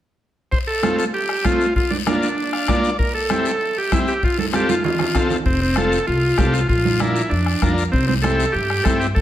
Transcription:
0.52 0.59 C5 medium
0.52 bombo low medium
0.52 long guiro medium
0.67 0.97 A4 medium
0.82 1.04 A3 medium
0.82 1.05 C4 medium
0.82 1.05 F4 medium
0.82 bombo rim medium
0.82 high conga medium
0.82 short guiro medium
0.98 1.05 A4 medium
0.98 short guiro medium
1.14 1.46 G4 medium
1.14 long guiro medium
1.29 bombo rim medium
1.44 1.66 A3 medium
1.44 1.66 C4 medium
1.44 1.74 F4 loud
1.44 1.67 F4 medium
1.44 bombo low medium
1.44 bombo rim medium
1.44 high conga medium
1.44 short guiro medium
1.60 short guiro medium
1.76 1.92 F4 medium
1.76 bombo low medium
1.76 long guiro medium
1.90 1.98 D4 medium
1.90 high conga medium
2.06 2.28 A#3 medium
2.06 2.80 D4 medium
2.06 2.28 D4 medium
2.06 2.29 F4 medium
2.06 bombo rim medium
2.06 high conga medium
2.06 short guiro medium
2.22 short guiro medium
2.38 long guiro medium
2.53 2.67 F5 medium
2.53 bombo rim medium
2.68 2.90 A#3 medium
2.68 2.90 D4 medium
2.68 2.90 F4 medium
2.68 2.97 D5 medium
2.68 bombo low medium
2.68 bombo rim medium
2.68 high conga medium
2.68 short guiro medium
2.84 short guiro medium
2.99 3.13 A#4 medium
2.99 bombo low medium
2.99 long guiro medium
3.15 3.46 A4 medium
3.30 3.52 C4 medium
3.30 3.52 E4 medium
3.30 3.52 G4 medium
3.30 bombo rim medium
3.30 high conga medium
3.30 short guiro medium
3.45 3.78 A4 medium
3.45 short guiro medium
3.61 long guiro medium
3.78 3.93 G4 medium
3.92 4.13 C4 medium
3.92 4.14 E4 medium
3.92 4.00 E4 medium
3.92 4.14 G4 medium
3.92 bombo low medium
3.92 bombo rim medium
3.92 high conga medium
3.92 short guiro medium
4.07 4.24 G4 medium
4.07 short guiro medium
4.23 4.38 F4 medium
4.23 bombo low medium
4.23 long guiro medium
4.38 4.46 A4 medium
4.38 high conga medium
4.53 4.75 C4 medium
4.53 4.75 F4 medium
4.53 4.70 G4 medium
4.53 4.75 A4 medium
4.53 bombo rim medium
4.53 high conga medium
4.53 short guiro medium
4.69 4.83 F4 medium
4.69 high conga medium
4.69 short guiro medium
4.84 5.27 F4 medium
4.84 low conga medium
4.84 long guiro medium
4.99 bombo rim medium
4.99 low conga medium
5.15 5.37 C4 medium
5.15 5.37 F4 medium
5.15 5.37 A4 medium
5.15 bombo low medium
5.15 bombo rim medium
5.15 low conga medium
5.15 short guiro medium
5.30 low conga medium
5.30 short guiro medium
5.46 5.95 F1 medium
5.46 5.60 C4 medium
5.46 bombo low medium
5.46 long guiro medium
5.62 5.77 C4 medium
5.76 5.99 C4 medium
5.76 5.99 F4 medium
5.76 6.06 A4 medium
5.76 5.99 A4 medium
5.76 bombo rim medium
5.76 high conga medium
5.76 short guiro medium
5.92 short guiro medium
6.07 6.32 C2 medium
6.07 6.39 F4 medium
6.07 long guiro medium
6.37 6.63 C2 medium
6.37 6.60 C4 medium
6.37 6.60 F4 medium
6.37 6.54 G4 medium
6.37 6.60 A4 medium
6.37 bombo low medium
6.37 bombo rim medium
6.37 high conga medium
6.37 short guiro medium
6.53 6.68 F4 medium
6.53 short guiro medium
6.69 7.19 A#1 medium
6.69 7.01 F4 medium
6.69 bombo low medium
6.69 long guiro medium
6.85 high conga medium
7.00 7.22 D4 medium
7.00 7.32 E4 medium
7.00 7.22 F4 medium
7.00 7.22 A#4 medium
7.00 bombo rim medium
7.00 high conga medium
7.00 short guiro medium
7.16 short guiro medium
7.30 7.56 F2 medium
7.30 7.73 D4 medium
7.30 long guiro medium
7.46 bombo rim medium
7.62 7.87 F2 medium
7.62 7.84 D4 medium
7.62 7.84 F4 medium
7.62 7.84 A#4 medium
7.62 bombo low medium
7.62 bombo rim medium
7.62 high conga medium
7.62 short guiro medium
7.78 short guiro medium
7.92 8.42 C2 medium
7.92 8.06 C4 medium
7.92 bombo low medium
7.92 long guiro medium
8.07 8.14 C4 medium
8.07 high conga medium
8.22 8.45 C4 medium
8.22 8.45 E4 medium
8.22 8.46 G4 medium
8.22 8.55 A4 loud
8.22 bombo rim medium
8.22 high conga medium
8.22 short guiro medium
8.40 short guiro medium
8.52 8.79 G2 medium
8.52 8.85 G4 medium
8.52 long guiro medium
8.70 bombo rim medium
8.84 9.10 G2 medium
8.84 9.07 C4 medium
8.84 9.07 E4 medium
8.84 9.07 G4 medium
8.84 8.99 A4 loud
8.84 bombo low medium
8.84 bombo rim medium
8.84 high conga medium
8.84 short guiro medium
9.00 9.07 G4 medium
9.00 short guiro medium
9.15 9.21 F2 medium
9.15 9.21 A4 loud
9.15 bombo low medium
9.15 long guiro medium

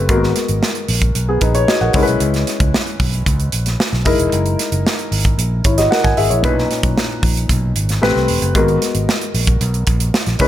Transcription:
0.00 0.11 A3 medium
0.00 0.12 C4 medium
0.00 0.12 G4 medium
0.00 0.12 B4 medium
0.08 0.31 G#1 loud
0.08 1.90 G#3 medium
0.08 0.16 A#3 medium
0.08 1.13 F#4 medium
0.08 1.14 A#4 medium
0.08 kick loud
0.08 closed hi-hat medium
0.16 1.16 B3 medium
0.23 snare soft
0.36 snare soft
0.36 closed hi-hat medium
0.48 0.60 G#1 medium
0.48 closed hi-hat soft
0.63 snare medium
0.75 closed hi-hat soft
0.88 1.11 A#1 medium
0.88 open hi-hat medium
1.02 kick medium
1.02 closed hi-hat soft
1.15 1.37 B1 medium
1.15 closed hi-hat medium
1.29 1.41 B3 medium
1.29 1.41 G#4 medium
1.41 1.64 A#1 medium
1.41 1.54 D#4 medium
1.41 1.54 B4 medium
1.41 kick medium
1.41 closed hi-hat medium
1.55 1.67 C#5 medium
1.55 closed hi-hat medium
1.68 1.81 F#4 medium
1.68 1.81 D#5 medium
1.68 snare loud
1.81 1.92 A#1 medium
1.81 1.95 A#4 medium
1.81 2.06 F#5 medium
1.93 2.05 C#2 loud
1.93 4.02 G#3 medium
1.93 4.02 C#4 medium
1.93 4.02 E4 medium
1.93 2.02 A#4 medium
1.93 kick loud
1.93 open hi-hat medium
2.03 4.06 B4 medium
2.07 2.19 B1 medium
2.07 closed hi-hat soft
2.20 2.43 C#2 loud
2.20 closed hi-hat medium
2.34 snare soft
2.34 closed hi-hat soft
2.47 snare soft
2.47 closed hi-hat medium
2.60 2.72 C#2 loud
2.60 kick loud
2.60 closed hi-hat soft
2.74 snare loud
2.87 closed hi-hat soft
3.00 3.22 B1 medium
3.00 kick loud
3.00 open hi-hat medium
3.14 closed hi-hat soft
3.26 3.49 C#2 loud
3.26 kick medium
3.26 closed hi-hat medium
3.40 closed hi-hat soft
3.52 3.75 A#1 medium
3.52 closed hi-hat medium
3.66 snare soft
3.66 closed hi-hat medium
3.80 snare loud
3.93 4.04 B1 medium
3.93 snare soft
4.05 4.17 F#1 medium
4.05 6.13 G#3 medium
4.05 5.61 D#4 medium
4.05 5.61 E4 medium
4.05 5.62 A#4 medium
4.05 kick medium
4.05 open hi-hat medium
4.19 4.30 E1 medium
4.19 closed hi-hat medium
4.32 4.55 F#1 loud
4.32 closed hi-hat medium
4.46 closed hi-hat soft
4.59 snare soft
4.59 closed hi-hat medium
4.72 4.83 F#1 loud
4.72 closed hi-hat soft
4.87 snare loud
4.99 closed hi-hat soft
5.12 5.34 G#1 medium
5.12 open hi-hat medium
5.25 kick medium
5.25 closed hi-hat soft
5.38 5.60 A#1 loud
5.38 closed hi-hat medium
5.64 5.87 G#1 medium
5.64 5.77 E4 medium
5.64 5.77 C#5 medium
5.64 kick medium
5.64 closed hi-hat medium
5.78 5.91 F#4 medium
5.78 5.90 D#5 medium
5.78 snare soft
5.78 closed hi-hat medium
5.91 6.04 A#4 medium
5.91 6.03 F#5 medium
5.91 snare loud
6.04 6.15 G#1 medium
6.04 6.17 G#5 medium
6.04 kick medium
6.04 snare soft
6.04 closed hi-hat soft
6.17 6.28 G#1 medium
6.17 6.30 G#4 medium
6.17 6.30 E5 medium
6.17 open hi-hat medium
6.30 6.44 A#1 medium
6.30 6.56 E4 soft
6.30 6.56 C#5 medium
6.30 closed hi-hat medium
6.42 6.66 B1 loud
6.42 7.98 A#2 medium
6.42 7.99 C#4 medium
6.42 7.99 D#4 medium
6.42 8.00 B4 medium
6.42 kick loud
6.42 closed hi-hat medium
6.58 snare soft
6.71 snare soft
6.71 closed hi-hat medium
6.83 6.94 B1 medium
6.83 kick loud
6.83 closed hi-hat soft
6.98 snare loud
7.23 7.45 A#1 loud
7.23 kick medium
7.23 open hi-hat medium
7.37 closed hi-hat medium
7.49 7.72 B1 medium
7.49 kick medium
7.49 closed hi-hat medium
7.76 7.98 G#1 medium
7.76 closed hi-hat medium
7.89 snare soft
7.89 closed hi-hat medium
8.01 8.13 A1 loud
8.01 8.55 A3 medium
8.01 8.55 C4 medium
8.01 8.55 G4 medium
8.01 8.55 B4 medium
8.01 snare loud
8.15 8.27 C2 medium
8.15 snare soft
8.28 8.40 E1 medium
8.28 open hi-hat medium
8.42 8.55 F#1 medium
8.42 closed hi-hat medium
8.54 8.77 G#1 loud
8.54 10.36 G#3 medium
8.54 10.36 B3 medium
8.54 10.37 F#4 medium
8.54 10.37 A#4 medium
8.54 kick loud
8.54 closed hi-hat medium
8.68 closed hi-hat soft
8.82 snare soft
8.82 closed hi-hat medium
8.95 9.06 G#1 medium
8.95 closed hi-hat soft
9.09 snare loud
9.21 closed hi-hat soft
9.34 9.56 A#1 medium
9.34 open hi-hat medium
9.47 kick medium
9.47 closed hi-hat soft
9.61 9.83 B1 loud
9.61 closed hi-hat medium
9.74 closed hi-hat soft
9.87 10.09 A#1 medium
9.87 kick loud
9.87 closed hi-hat medium
10.00 closed hi-hat medium
10.14 snare loud
10.26 10.38 A#1 medium
10.26 snare soft
10.26 closed hi-hat soft
10.39 10.48 C#2 medium
10.39 10.48 G#3 medium
10.39 10.48 C#4 medium
10.39 10.48 E4 medium
10.39 10.48 B4 medium
10.39 kick loud
10.39 open hi-hat medium

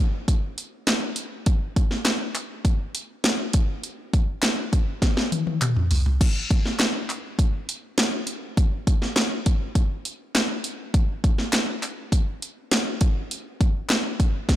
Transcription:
0.28 kick medium
0.28 closed hi-hat medium
0.58 closed hi-hat medium
0.87 snare loud
0.87 clap medium
0.87 closed hi-hat medium
1.16 closed hi-hat medium
1.46 kick loud
1.46 closed hi-hat medium
1.76 kick loud
1.76 closed hi-hat medium
1.91 snare soft
2.05 snare loud
2.05 clap loud
2.05 closed hi-hat medium
2.35 clap medium
2.35 closed hi-hat medium
2.65 kick medium
2.65 closed hi-hat medium
2.95 closed hi-hat medium
3.24 snare loud
3.24 clap medium
3.24 closed hi-hat loud
3.53 kick loud
3.53 closed hi-hat medium
3.83 closed hi-hat medium
4.13 kick medium
4.13 closed hi-hat medium
4.42 snare loud
4.42 clap medium
4.42 closed hi-hat medium
4.73 kick medium
4.73 closed hi-hat medium
5.02 kick medium
5.02 snare medium
5.02 closed hi-hat medium
5.17 snare medium
5.32 closed hi-hat medium
5.32 high tom medium
5.47 high tom medium
5.62 clap medium
5.62 closed hi-hat medium
5.62 mid tom medium
5.76 mid tom medium
5.91 floor tom loud
5.91 open hi-hat medium
6.06 floor tom medium
6.21 kick loud
6.21 closed hi-hat medium
6.21 crash loud
6.51 kick loud
6.51 closed hi-hat medium
6.66 snare soft
6.79 snare loud
6.79 clap loud
6.79 closed hi-hat medium
7.10 clap medium
7.10 closed hi-hat medium
7.39 kick medium
7.39 closed hi-hat medium
7.69 closed hi-hat medium
7.98 snare loud
7.98 clap medium
7.98 closed hi-hat loud
8.27 closed hi-hat medium
8.57 kick loud
8.57 closed hi-hat medium
8.87 kick medium
8.87 closed hi-hat medium
9.02 snare soft
9.16 snare loud
9.16 clap medium
9.16 closed hi-hat medium
9.46 kick medium
9.46 closed hi-hat medium
9.75 kick medium
9.75 closed hi-hat medium
10.05 closed hi-hat medium
10.35 snare loud
10.35 clap medium
10.35 closed hi-hat medium
10.64 closed hi-hat medium
10.94 kick loud
10.94 closed hi-hat medium
11.24 kick loud
11.24 closed hi-hat medium
11.38 snare soft
11.53 snare loud
11.53 clap loud
11.53 closed hi-hat medium
11.83 clap medium
11.83 closed hi-hat medium
12.12 kick medium
12.12 closed hi-hat medium
12.42 closed hi-hat medium
12.71 snare loud
12.71 clap medium
12.71 closed hi-hat loud
13.01 kick loud
13.01 closed hi-hat medium
13.31 closed hi-hat medium
13.61 kick loud
13.61 closed hi-hat medium
13.89 snare loud
13.89 clap loud
13.89 closed hi-hat medium
14.20 kick medium
14.20 closed hi-hat medium
14.49 kick medium
14.49 snare medium
14.49 closed hi-hat medium

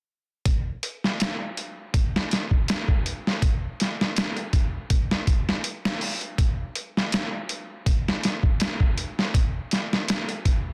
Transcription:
0.45 kick medium
0.45 closed hi-hat medium
0.83 closed hi-hat medium
1.04 snare soft
1.20 snare medium
1.20 closed hi-hat medium
1.57 closed hi-hat soft
1.94 kick medium
1.94 closed hi-hat medium
2.16 snare soft
2.31 snare soft
2.31 closed hi-hat medium
2.51 kick medium
2.68 snare loud
2.68 closed hi-hat medium
2.88 kick medium
3.06 closed hi-hat medium
3.27 snare soft
3.42 kick loud
3.42 closed hi-hat medium
3.80 snare soft
3.80 closed hi-hat medium
4.01 snare soft
4.16 snare loud
4.16 closed hi-hat medium
4.37 closed hi-hat soft
4.53 kick medium
4.53 closed hi-hat medium
4.90 kick medium
4.90 closed hi-hat medium
5.11 snare medium
5.27 kick medium
5.27 closed hi-hat medium
5.49 snare soft
5.64 closed hi-hat medium
5.85 snare loud
6.01 open hi-hat medium
6.21 closed hi-hat soft
6.38 kick medium
6.38 closed hi-hat medium
6.75 closed hi-hat medium
6.97 snare soft
7.12 snare medium
7.12 closed hi-hat medium
7.49 closed hi-hat medium
7.86 kick loud
7.86 closed hi-hat medium
8.08 snare soft
8.23 snare soft
8.23 closed hi-hat medium
8.43 kick medium
8.60 snare loud
8.60 closed hi-hat medium
8.80 kick medium
8.98 closed hi-hat medium
9.19 snare soft
9.34 kick medium
9.34 closed hi-hat medium
9.71 snare soft
9.71 closed hi-hat medium
9.93 snare soft
10.08 snare loud
10.08 closed hi-hat medium
10.29 closed hi-hat soft
10.45 kick medium
10.45 closed hi-hat medium

